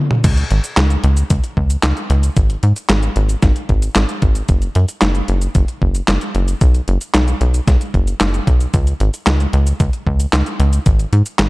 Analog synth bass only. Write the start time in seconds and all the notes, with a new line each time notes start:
0.24 C#2
0.51 G#1
0.77 C#2
1.04 C#2
1.30 C#2
1.57 C#2
1.83 C#2
2.10 C#2
2.37 G#1
2.63 G#2
2.90 G#1
3.16 G#1
3.43 G#1
3.69 G#1
3.96 G#1
4.22 G#1
4.49 F#1
4.76 F#2
5.02 F#1
5.29 F#1
5.55 F#1
5.82 F#1
6.08 F#1
6.35 F#1
6.61 B1
6.88 F#1
7.15 B1
7.41 B1
7.68 B1
7.94 F#1
8.21 F#1
8.47 B1
8.74 C#2
9.00 G#1
9.27 C#2
9.53 C#2
9.80 C#2
10.07 C#2
10.33 C#2
10.60 C#2
10.86 G#1
11.13 G#2
11.39 G#1